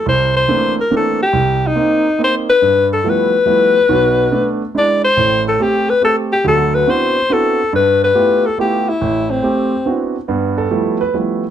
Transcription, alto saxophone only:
X:1
M:3/4
L:1/8
Q:"Swing" 1/4=141
K:Gmix
V:1 name="Alto saxophone"
c c2 _B A G- | G _E3 c B- | B A B4- | B3 z d c- |
c A G B A G | A B c2 A2 | B B2 A G E- | E C4 z |
z6 |]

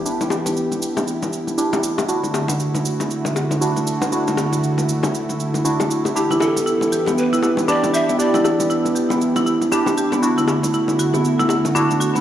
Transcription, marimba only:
X:1
M:4/4
L:1/16
Q:"Swing 16ths" 1/4=118
K:Em
V:1 name="Marimba"
z16 | z16 | z16 | z E E z E z G B, z E E z D z G B, |
z E E z E z G B, z E E z D z G B, | z E E z E z F B, z E E z D z F B, |]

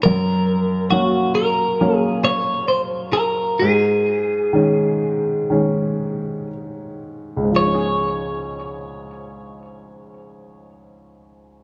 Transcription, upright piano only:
X:1
M:4/4
L:1/8
Q:1/4=61
K:Db
V:1 name="Upright piano" clef=bass
G,,2 [G,B,D]2 [G,B,D]2 z2 | A,,2 [E,A,D]2 [E,A,D]2 z2 | [D,,A,,F,A,DA]8 |]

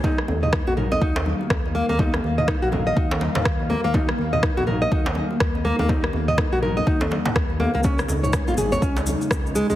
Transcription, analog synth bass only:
X:1
M:4/4
L:1/16
Q:"Swing 16ths" 1/4=123
K:Db
V:1 name="Analog synth bass" clef=bass
z2 E,,3 B,,,3 E,,3 z E,,3 E,,- | E,,2 E,,3 B,,,3 E,,3 z E,,3 E,,- | E,,2 E,,3 B,,,3 E,,3 z E,,3 E,,- | E,,2 E,,3 B,,,3 E,,3 z E,,3 D,,- |
D,,2 D,,3 A,,,3 D,,3 z D,,3 D,, |]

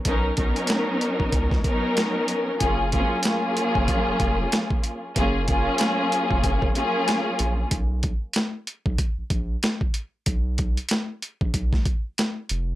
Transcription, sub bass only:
X:1
M:4/4
L:1/16
Q:"Swing 16ths" 1/4=94
K:F#
V:1 name="Sub bass" clef=bass
B,,,2 B,,, z4 A,,, C,,2 z6 | F,,,3 z4 F,,, z E,,, E,,,2 z4 | F,,,4 z3 E,,, F,,,2 z4 A,,,2 | B,,,3 z4 B,,, z _B,,, B,,,2 z4 |
B,,,4 z3 _B,,, =B,,,2 z4 =F,,,2 |]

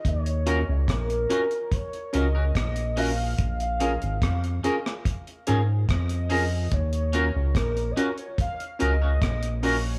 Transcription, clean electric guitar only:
X:1
M:4/4
L:1/16
Q:1/4=72
K:Ebm
V:1 name="Clean electric guitar"
z2 [DGB] z3 [DGB] z3 [DGB] [DGB] z2 [DGB] z | z2 [DAB] z3 [DAB] z3 [DAB] z3 [DAB] z | z2 [DGB] z3 [DGB] z3 [DGB] [DGB] z2 [DGB] z |]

